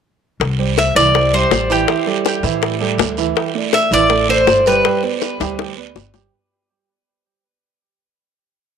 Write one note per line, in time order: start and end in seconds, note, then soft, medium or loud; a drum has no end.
0.40 0.92 C2 medium
0.40 high bongo medium
0.40 long guiro medium
0.58 0.89 G3 medium
0.58 0.89 G4 medium
0.58 0.89 C5 medium
0.77 0.96 E5 medium
0.77 high bongo soft
0.77 short guiro medium
0.95 1.47 C2 medium
0.95 1.11 E3 medium
0.95 1.11 E4 medium
0.95 1.34 D5 loud
0.95 1.11 E5 medium
0.95 short guiro medium
1.14 1.29 G3 medium
1.14 1.30 G4 medium
1.14 1.30 C5 medium
1.14 high bongo medium
1.14 long guiro medium
1.33 1.63 G3 medium
1.33 1.63 G4 medium
1.33 1.63 C5 medium
1.33 1.71 C5 medium
1.50 1.84 A1 medium
1.50 high bongo medium
1.50 low bongo medium
1.50 short guiro medium
1.70 1.85 E3 medium
1.70 1.85 E4 medium
1.70 2.05 G4 medium
1.70 1.85 E5 medium
1.70 short guiro medium
1.88 2.03 E3 medium
1.88 2.04 E4 medium
1.88 2.04 E5 medium
1.88 high bongo medium
1.88 long guiro medium
2.06 2.37 G3 medium
2.06 2.37 G4 medium
2.06 2.37 A4 medium
2.06 high bongo soft
2.25 high bongo medium
2.25 short guiro medium
2.43 2.95 A2 medium
2.43 2.74 E3 medium
2.43 2.74 E4 medium
2.43 2.74 E5 medium
2.43 high bongo soft
2.43 short guiro medium
2.62 high bongo medium
2.62 long guiro medium
2.80 3.11 G3 medium
2.80 3.11 G4 medium
2.80 3.11 A4 medium
2.98 3.31 D2 medium
2.98 high bongo medium
2.98 low bongo medium
2.98 short guiro medium
3.17 3.48 E3 medium
3.17 3.48 E4 medium
3.17 3.48 E5 medium
3.17 high bongo soft
3.17 short guiro medium
3.36 high bongo medium
3.36 long guiro medium
3.55 3.85 A3 medium
3.55 3.85 A4 medium
3.55 3.86 D5 medium
3.73 3.93 E5 loud
3.73 high bongo medium
3.73 short guiro medium
3.91 4.43 A1 medium
3.91 4.07 E3 medium
3.91 4.07 E4 medium
3.91 4.30 D5 loud
3.91 4.07 E5 medium
3.91 short guiro medium
4.10 4.25 A3 medium
4.10 4.26 A4 medium
4.10 4.26 D5 medium
4.10 high bongo medium
4.10 long guiro medium
4.29 4.59 A3 medium
4.29 4.59 A4 medium
4.29 4.67 C5 medium
4.29 4.59 D5 medium
4.47 4.80 G1 medium
4.47 high bongo medium
4.47 low bongo medium
4.47 short guiro medium
4.66 4.81 G3 medium
4.66 4.81 G4 medium
4.66 5.01 B4 medium
4.66 4.82 G5 medium
4.66 short guiro medium
4.85 5.00 G3 medium
4.85 5.00 G4 medium
4.85 5.00 G5 medium
4.85 high bongo medium
4.85 long guiro medium
5.03 5.33 B3 medium
5.03 5.34 B4 medium
5.03 5.34 D5 medium
5.03 high bongo soft
5.21 high bongo medium
5.21 short guiro medium
5.40 5.92 D2 medium
5.40 5.71 G3 medium
5.40 5.71 G4 medium
5.40 5.71 G5 medium
5.40 high bongo medium
5.40 short guiro medium
5.59 high bongo medium
5.59 long guiro medium
5.77 6.07 B3 medium
5.77 6.08 B4 medium
5.77 6.08 D5 medium
5.95 6.28 G1 medium
5.95 low bongo loud
5.95 short guiro medium
6.14 6.29 G3 medium
6.14 6.29 G4 medium
6.14 6.29 G5 medium
6.14 low bongo medium
6.14 short guiro medium